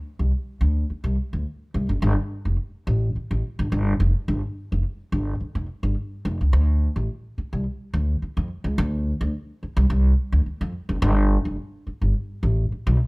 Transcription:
0.19 0.30 C2 medium
0.61 0.83 D2 medium
0.90 muted upright bass stroke soft
1.04 1.14 C2 medium
1.33 1.43 D2 medium
1.74 1.86 C2 medium
1.89 1.99 F#1 medium
2.02 2.14 G1 loud
2.45 2.56 F1 medium
2.87 3.09 A1 medium
3.16 muted upright bass stroke soft
3.31 3.41 A1 medium
3.59 3.69 G1 medium
3.72 3.93 G1 medium
4.00 4.11 F1 medium
4.28 4.39 G1 loud
4.72 4.82 F1 medium
5.12 5.34 G1 medium
5.40 muted upright bass stroke soft
5.55 5.65 F1 medium
5.83 5.93 G1 medium
6.25 6.36 F1 medium
6.41 6.51 C#2 medium
6.53 6.86 D2 loud
6.96 7.06 A1 medium
7.38 muted upright bass stroke medium
7.53 7.63 C2 medium
7.94 8.15 D2 medium
8.22 muted upright bass stroke soft
8.37 8.47 F2 medium
8.64 8.74 C#2 medium
8.78 9.11 D2 loud
9.21 9.31 D2 loud
9.63 muted upright bass stroke medium
9.77 9.87 C2 loud
9.90 10.12 C2 loud
10.32 10.43 D2 medium
10.46 muted upright bass stroke soft
10.61 10.71 F2 medium
10.89 10.99 F#1 medium
11.02 11.35 G1 loud
11.45 11.55 F1 medium
11.87 muted upright bass stroke soft
12.01 12.12 G1 medium
12.43 12.65 A1 medium
12.72 muted upright bass stroke soft
12.87 12.97 B1 loud

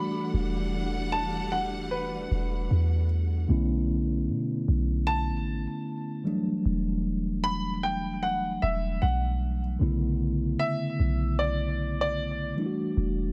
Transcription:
0.00 3.05 E3 medium
0.00 3.46 E3 medium
0.00 3.06 G3 medium
0.00 3.46 G3 medium
0.00 3.06 A3 medium
0.00 3.07 D4 medium
0.00 3.46 D4 medium
0.00 3.07 F#4 medium
0.00 3.45 A4 medium
0.00 3.46 F#5 medium
0.00 0.30 B5 medium
0.34 2.27 E1 loud
1.12 1.49 A5 loud
1.52 1.61 F#5 loud
1.91 3.06 B4 medium
2.31 2.69 E1 loud
2.71 3.46 E2 loud
3.47 4.30 B1 loud
3.47 6.21 D3 medium
3.47 6.21 A3 medium
3.47 6.22 B3 medium
3.47 6.22 C#4 medium
3.47 6.23 E4 medium
4.29 4.66 B2 loud
4.68 5.32 B1 loud
5.07 6.21 A5 loud
5.31 5.68 A1 loud
6.24 9.37 E3 medium
6.24 9.37 G3 medium
6.24 9.38 A3 medium
6.24 9.38 D4 medium
6.28 9.39 F#3 medium
6.66 8.59 E1 loud
7.44 7.80 B5 loud
7.83 8.24 G5 loud
8.23 8.63 F#5 medium
8.62 9.01 E1 loud
8.62 9.03 E5 medium
9.02 9.78 B1 loud
9.02 9.60 F#5 medium
9.79 10.57 B1 loud
9.79 12.54 C#3 medium
9.79 12.52 D3 medium
9.79 12.53 A3 medium
9.79 12.53 B3 medium
9.79 12.54 E4 medium
10.59 11.41 E5 loud
11.00 12.53 B1 loud
11.39 12.00 D5 loud
12.01 12.53 D5 loud
12.56 13.32 E3 medium
12.56 13.32 G3 medium
12.56 13.32 A3 medium
12.56 13.32 D4 medium
12.60 12.66 E4 medium
12.66 13.32 F#4 medium
12.97 13.32 E1 loud

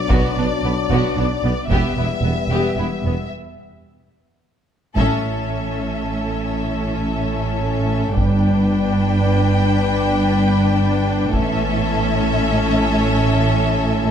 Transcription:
0.00 1.52 F#3 medium
0.00 1.52 D4 medium
0.00 1.66 D5 medium
0.09 0.17 B1 medium
0.09 0.22 B1 medium
0.09 0.19 B2 medium
0.09 0.36 B3 medium
0.09 0.35 F#4 medium
0.09 taiko medium
0.36 0.44 B1 soft
0.36 0.48 B1 soft
0.36 0.46 B2 soft
0.36 0.46 B3 soft
0.36 0.45 D4 soft
0.62 0.70 B1 soft
0.62 0.75 B1 soft
0.62 0.72 B2 soft
0.62 0.72 B3 soft
0.62 0.73 B3 soft
0.89 0.97 B1 medium
0.89 1.01 B1 medium
0.89 0.98 B2 medium
0.89 1.15 B3 medium
0.89 1.16 F#4 soft
0.89 taiko medium
1.16 1.24 B1 soft
1.16 1.28 B1 soft
1.16 1.25 B2 soft
1.16 1.25 B3 soft
1.16 1.25 D4 soft
1.43 1.51 B1 soft
1.43 1.54 B1 soft
1.43 1.52 B2 soft
1.43 1.52 B3 soft
1.43 1.53 B3 soft
1.68 1.76 E1 soft
1.68 1.82 E1 medium
1.68 1.78 E2 medium
1.68 3.28 G3 soft
1.68 3.28 B3 soft
1.68 1.96 B3 medium
1.68 1.96 G4 soft
1.68 3.29 E5 soft
1.68 taiko medium
1.96 2.04 E1 soft
1.96 2.09 E1 soft
1.96 2.05 E2 soft
1.96 2.06 B3 soft
1.96 2.06 E4 soft
2.22 2.30 E1 soft
2.22 2.35 E1 soft
2.22 2.32 E2 soft
2.22 2.32 B3 soft
2.22 2.33 B3 soft
2.49 2.57 E1 soft
2.49 2.61 E1 soft
2.49 2.59 E2 soft
2.49 2.77 B3 soft
2.49 2.77 G4 soft
2.77 2.85 E1 soft
2.77 2.89 E1 soft
2.77 2.86 E2 soft
2.77 2.87 B3 soft
2.77 2.87 E4 soft
3.04 3.12 E1 soft
3.04 3.16 E1 soft
3.04 3.13 E2 soft
3.04 3.14 B3 soft
4.96 8.12 A1 medium
4.96 8.12 A2 medium
4.96 8.12 A3 soft
4.96 8.12 C#4 soft
4.96 8.13 C#4 soft
4.96 8.12 A4 soft
4.96 8.13 E5 soft
4.96 taiko soft
8.16 11.29 G1 soft
8.16 11.30 G2 soft
8.16 12.09 B3 soft
8.16 11.34 D4 soft
8.16 11.30 D4 soft
8.16 11.33 B4 soft
8.16 11.33 G5 soft
8.16 taiko medium
11.33 14.11 A1 soft
11.33 14.11 A2 medium
11.33 14.11 C#4 medium
11.33 14.11 A4 medium
11.33 14.11 E5 medium
11.33 taiko medium
12.13 14.11 A3 medium

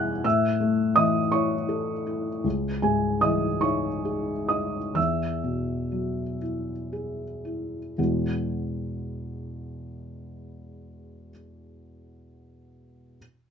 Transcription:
0.00 0.21 E2 medium
0.00 0.27 B2 soft
0.00 0.27 E3 soft
0.00 0.27 E4 soft
0.00 0.11 G#4 soft
0.00 0.25 E5 medium
0.00 0.22 F#5 soft
0.00 0.27 G#5 medium
0.00 0.24 E6 medium
0.00 0.24 F#6 medium
0.00 0.26 G#6 medium
0.24 2.41 A2 medium
0.24 0.92 E5 medium
0.24 0.96 E6 medium
0.60 1.18 A3 soft
0.96 1.55 E3 soft
0.96 1.30 D#5 medium
0.96 1.32 D#6 medium
1.32 1.92 E4 soft
1.32 2.41 C#5 medium
1.32 2.45 C#6 medium
1.69 2.29 A4 soft
2.07 2.45 E4 soft
2.44 4.92 C#2 soft
2.82 3.47 G#2 soft
2.82 3.20 G#4 soft
2.82 3.22 G#5 medium
3.21 3.88 E3 soft
3.21 3.61 D#5 medium
3.21 3.63 D#6 medium
3.61 4.31 D#4 soft
3.61 4.46 C#5 soft
3.61 4.49 C#6 medium
4.05 4.77 G#4 soft
4.49 4.96 D#4 soft
4.49 4.93 D#5 soft
4.49 4.96 D#6 medium
4.95 7.93 E2 soft
4.95 6.36 E5 soft
4.95 6.40 E6 medium
5.44 6.21 B2 soft
5.92 6.70 F#3 soft
6.41 7.23 E4 soft
6.93 7.78 G#4 soft
7.45 7.98 E4 soft
7.98 11.30 E2 soft
7.98 11.30 B2 soft
7.98 11.30 G#3 soft
7.98 11.31 B3 soft
7.98 11.31 E4 soft
7.98 11.31 F#4 soft

